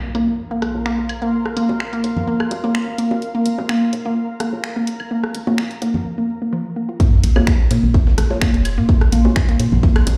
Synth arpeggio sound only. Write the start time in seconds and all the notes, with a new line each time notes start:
0.15 A#3
0.51 A#3
0.86 A#3
1.22 A#3
1.57 A#3
1.93 A#3
2.28 A#3
2.64 A#3
2.98 A#3
3.35 A#3
3.69 A#3
4.06 A#3
4.40 A#3
4.76 A#3
5.11 A#3
5.47 A#3
5.82 A#3
6.18 A#3
6.42 A#3
6.53 F3
6.76 A#3
6.89 F4
7.00 A#3
7.36 A#3
7.71 A#3
8.07 A#3
8.41 A#3
8.78 A#3
9.12 A#3
9.49 A#3
9.83 A#3